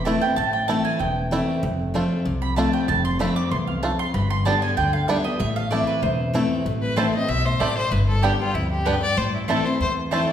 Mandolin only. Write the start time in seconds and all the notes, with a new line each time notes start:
0.05 A5
0.21 G5
0.36 A5
0.53 G5
0.68 A5
0.85 G#5
0.99 G5
2.42 B5
2.56 A5
2.73 G5
2.88 A5
3.05 C6
3.20 B5
3.36 D6
3.51 C6
3.67 F5
3.83 A5
3.99 C6
4.14 B5
4.30 C6
4.45 A5
4.62 G#5
4.77 G5
4.93 F5
5.08 E5
5.24 D#5
5.39 E5
5.56 F5
5.71 D5
5.87 B4
6.02 C5
6.97 C4 E4 C5 A5
7.60 C4 E4 C5 A5
8.22 B3 G4 D5 G5
8.85 B3 G4 D5 G5
9.48 C4 E4 C5 A5
10.11 C4 E4 C5 A5